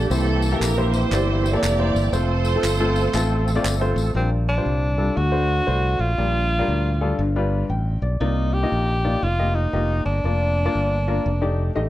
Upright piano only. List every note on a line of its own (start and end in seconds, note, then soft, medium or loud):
0.11 0.90 C3 medium
0.11 0.45 A#3 medium
0.11 0.45 E4 medium
0.11 0.45 G4 medium
0.11 0.45 C5 medium
0.52 0.69 A#3 medium
0.52 0.69 E4 medium
0.52 0.69 G4 medium
0.52 0.69 A4 medium
0.77 1.05 A#3 medium
0.77 1.05 E4 medium
0.77 1.05 G4 medium
0.77 1.05 C5 medium
1.12 1.46 A#3 medium
1.12 1.47 E4 medium
1.12 1.46 G4 medium
1.12 1.46 D5 medium
1.53 1.70 A#3 medium
1.53 1.70 E4 medium
1.53 1.70 G4 medium
1.53 1.70 A4 medium
1.79 2.06 A#3 medium
1.79 2.06 E4 medium
1.79 2.06 G4 medium
1.79 2.06 C5 medium
2.13 2.47 A3 medium
2.13 2.47 C4 medium
2.13 2.47 F4 medium
2.13 2.47 C5 medium
2.55 2.72 A3 medium
2.55 2.72 C4 medium
2.55 2.72 F4 medium
2.55 2.72 A4 medium
2.80 3.07 A3 medium
2.80 3.07 C4 medium
2.80 3.07 F4 medium
2.80 3.07 A4 medium
3.14 3.49 A3 medium
3.14 3.49 C4 medium
3.14 3.49 F4 medium
3.14 3.49 A4 loud
3.55 3.72 A3 medium
3.55 3.73 C4 medium
3.55 3.73 F4 medium
3.55 3.73 D5 medium
3.81 4.08 A3 medium
3.81 4.08 C4 medium
3.81 4.09 F4 medium
3.81 4.08 C5 loud
4.15 4.94 A#2 soft
4.15 4.49 G3 medium
4.15 4.50 D4 medium
4.15 4.50 F4 medium
4.15 4.50 A#4 medium
4.58 4.86 G3 medium
4.58 4.86 D4 medium
4.58 4.86 F4 medium
4.58 4.86 C5 medium
4.98 5.17 G3 medium
4.98 5.17 D4 medium
4.98 5.17 F4 medium
4.98 5.17 A4 medium
5.16 5.95 D3 medium
5.32 5.60 A3 medium
5.32 5.60 D4 medium
5.32 5.60 F#4 medium
5.32 5.60 C5 medium
5.67 6.08 A3 medium
5.67 6.08 D4 medium
5.67 6.08 F#4 medium
5.67 6.08 C5 medium
6.18 6.97 A#2 soft
6.18 6.52 G3 medium
6.18 6.52 D4 medium
6.18 6.53 F4 medium
6.18 6.52 A#4 medium
6.59 6.88 G3 medium
6.59 6.88 D4 medium
6.59 6.88 F4 medium
6.59 6.88 A#4 medium
7.01 7.20 G3 medium
7.01 7.20 D4 medium
7.01 7.20 F4 medium
7.01 7.20 A4 medium
7.20 7.99 G2 medium
7.36 7.63 G3 medium
7.36 7.63 D4 medium
7.36 7.63 F4 medium
7.36 7.63 B4 medium
7.70 8.01 G5 medium
8.02 8.19 D5 medium
8.20 9.00 C3 medium
8.20 8.55 A#3 medium
8.20 8.55 D#4 medium
8.20 8.55 F4 medium
8.20 8.55 D5 medium
8.63 8.91 A#3 medium
8.63 8.92 D#4 medium
8.63 8.92 F4 medium
8.63 8.92 D#5 medium
9.05 9.23 A#3 medium
9.05 9.23 D#4 medium
9.05 9.23 F4 medium
9.05 9.23 D5 medium
9.39 9.66 A#3 medium
9.39 9.66 F4 medium
9.39 9.66 G4 medium
9.39 9.66 D#5 medium
9.73 10.14 A#3 medium
9.73 10.15 F4 medium
9.73 10.14 G4 medium
9.73 10.15 D#5 medium
10.25 10.59 A#3 medium
10.25 10.59 D4 medium
10.25 10.59 F4 medium
10.25 10.59 D5 medium
10.66 10.94 A#3 medium
10.66 10.95 D4 medium
10.66 10.94 F4 medium
10.66 10.94 D5 medium
11.08 11.26 A#3 medium
11.08 11.26 D4 medium
11.08 11.26 F4 medium
11.08 11.26 A#4 medium
11.41 11.69 A3 medium
11.41 11.69 D#4 medium
11.41 11.69 G4 medium
11.41 11.69 D5 medium
11.75 11.89 A3 medium
11.75 11.89 D#4 medium
11.75 11.89 G4 medium
11.75 11.89 D#5 medium